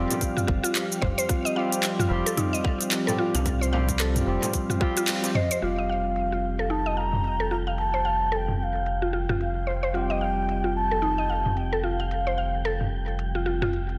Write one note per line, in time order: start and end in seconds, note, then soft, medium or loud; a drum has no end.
0.00 13.98 F3 medium
0.00 1.53 G3 medium
0.00 1.53 C4 medium
0.00 13.98 C4 medium
0.00 1.54 F4 medium
0.00 1.55 G4 medium
0.00 13.98 G4 medium
0.00 5.63 F5 medium
0.00 13.98 F5 medium
0.11 closed hi-hat soft
0.11 frame drum medium
0.11 shaker medium
0.21 kick medium
0.21 closed hi-hat medium
0.21 shaker medium
0.37 0.46 F4 medium
0.37 mid tom medium
0.37 shaker soft
0.47 0.60 G1 medium
0.47 0.62 F4 medium
0.47 kick loud
0.63 0.74 F4 loud
0.63 closed hi-hat soft
0.63 shaker medium
0.75 clap medium
0.75 closed hi-hat medium
0.75 shaker medium
0.92 shaker soft
1.02 1.14 F1 medium
1.02 1.16 C5 medium
1.02 kick loud
1.02 mid tom medium
1.18 1.28 C5 loud
1.18 closed hi-hat soft
1.18 shaker medium
1.29 1.44 F4 medium
1.29 kick loud
1.29 closed hi-hat medium
1.29 shaker soft
1.45 1.55 D#5 loud
1.45 shaker soft
1.55 2.07 G3 medium
1.55 2.08 C4 medium
1.55 2.08 F4 medium
1.55 2.08 G4 medium
1.55 1.98 F5 medium
1.72 closed hi-hat soft
1.72 shaker medium
1.83 clap medium
1.83 closed hi-hat medium
1.83 shaker soft
1.99 2.10 F4 medium
1.99 mid tom medium
1.99 shaker soft
2.09 2.22 F1 loud
2.09 3.03 G3 medium
2.09 3.03 C4 medium
2.09 3.04 F4 medium
2.09 3.05 G4 loud
2.26 2.37 A4 loud
2.26 closed hi-hat soft
2.26 shaker medium
2.37 2.53 D#4 medium
2.37 closed hi-hat medium
2.37 mid tom medium
2.37 shaker medium
2.53 2.63 D#5 loud
2.53 shaker soft
2.64 3.06 F5 medium
2.64 kick loud
2.81 closed hi-hat soft
2.81 shaker medium
2.91 clap loud
2.91 closed hi-hat medium
2.91 shaker medium
3.06 3.69 G3 medium
3.06 3.70 C4 medium
3.06 3.71 F4 medium
3.06 3.71 G4 medium
3.06 3.17 A4 loud
3.06 frame drum medium
3.06 shaker soft
3.18 3.34 F4 medium
3.35 4.22 C2 medium
3.35 3.60 F5 medium
3.35 closed hi-hat soft
3.35 frame drum medium
3.35 shaker medium
3.45 kick loud
3.45 closed hi-hat medium
3.45 frame drum medium
3.45 shaker soft
3.61 3.71 C5 medium
3.61 shaker soft
3.72 4.24 G3 medium
3.72 4.24 C4 medium
3.72 4.24 F4 medium
3.72 4.25 G4 medium
3.72 3.99 F5 medium
3.72 frame drum medium
3.89 kick medium
3.89 closed hi-hat soft
3.89 shaker medium
4.00 4.15 A4 loud
4.00 clap medium
4.00 closed hi-hat medium
4.00 shaker soft
4.16 closed hi-hat soft
4.16 mid tom medium
4.16 shaker soft
4.26 4.38 F1 medium
4.26 4.78 G3 medium
4.26 4.79 C4 medium
4.26 4.79 F4 medium
4.26 4.79 G4 medium
4.42 closed hi-hat soft
4.42 frame drum medium
4.42 shaker medium
4.54 kick medium
4.54 closed hi-hat medium
4.54 shaker medium
4.70 4.80 F4 medium
4.70 mid tom medium
4.70 shaker soft
4.80 5.20 G3 medium
4.80 5.20 C4 medium
4.80 4.96 F4 medium
4.80 5.20 F4 medium
4.80 5.21 G4 loud
4.80 kick loud
4.97 5.08 F4 loud
4.97 closed hi-hat soft
4.97 shaker medium
5.08 clap loud
5.08 closed hi-hat medium
5.08 shaker medium
5.23 5.30 G3 medium
5.23 5.30 C4 medium
5.23 5.31 F4 medium
5.23 5.31 G4 medium
5.23 closed hi-hat soft
5.23 shaker soft
5.35 5.49 C5 medium
5.35 5.64 D#5 medium
5.35 mid tom medium
5.51 5.61 C5 loud
5.51 closed hi-hat soft
5.51 shaker medium
5.60 13.98 F1 medium
5.60 9.91 G3 medium
5.60 9.91 C4 medium
5.60 5.77 F4 medium
5.60 9.92 F4 medium
5.60 9.93 G4 medium
5.60 6.72 F5 medium
5.60 13.98 G5 medium
5.60 closed hi-hat medium
5.60 crash medium
5.78 5.88 D#5 medium
5.78 closed hi-hat soft
5.89 6.31 F5 medium
6.16 closed hi-hat medium
6.32 6.43 F4 medium
6.59 6.70 A4 medium
6.59 closed hi-hat soft
6.70 6.85 D#4 medium
6.70 6.99 A5 loud
6.70 closed hi-hat medium
6.86 6.96 D#5 medium
6.97 7.38 F5 medium
6.97 7.50 A#5 loud
7.13 mid tom medium
7.24 closed hi-hat medium
7.40 7.50 A4 medium
7.51 7.66 F4 medium
7.51 7.57 A#5 medium
7.67 7.92 F5 medium
7.67 closed hi-hat soft
7.78 8.32 A5 medium
7.78 closed hi-hat medium
7.94 8.04 C5 medium
7.94 closed hi-hat soft
8.05 8.31 F5 medium
8.32 8.47 A4 loud
8.32 8.37 A5 medium
8.32 closed hi-hat medium
8.36 8.58 G5 medium
8.48 mid tom soft
8.59 8.64 G5 medium
8.63 9.09 F5 medium
8.75 closed hi-hat soft
8.86 closed hi-hat medium
9.02 9.12 F4 medium
9.13 9.28 F4 medium
9.29 9.40 F4 loud
9.29 mid tom medium
9.41 9.97 F5 medium
9.41 closed hi-hat medium
9.67 9.82 C5 medium
9.83 9.93 C5 medium
9.83 closed hi-hat soft
9.93 13.98 G3 medium
9.93 13.98 C4 medium
9.93 10.09 F4 medium
9.93 13.98 F4 medium
9.93 13.98 G4 medium
9.93 10.75 G5 medium
9.93 closed hi-hat medium
10.10 10.20 D#5 loud
10.10 closed hi-hat soft
10.21 10.63 F5 medium
10.49 closed hi-hat medium
10.64 10.75 F4 medium
10.76 11.58 A5 loud
10.91 11.02 A4 medium
10.91 closed hi-hat soft
11.02 11.17 D#4 medium
11.02 closed hi-hat medium
11.18 11.28 D#5 medium
11.30 11.71 F5 medium
11.46 mid tom medium
11.57 11.83 G5 medium
11.57 closed hi-hat medium
11.73 11.83 A4 loud
11.83 11.99 F4 medium
11.83 12.88 F5 medium
12.00 12.25 F5 medium
12.00 closed hi-hat soft
12.11 closed hi-hat medium
12.27 12.37 C5 medium
12.27 closed hi-hat soft
12.38 12.64 F5 medium
12.65 12.80 A4 loud
12.65 closed hi-hat medium
12.81 mid tom soft
13.08 closed hi-hat soft
13.19 closed hi-hat medium
13.35 13.45 F4 medium
13.46 13.60 F4 medium
13.62 13.72 F4 loud
13.62 mid tom medium
13.73 closed hi-hat medium
13.89 closed hi-hat soft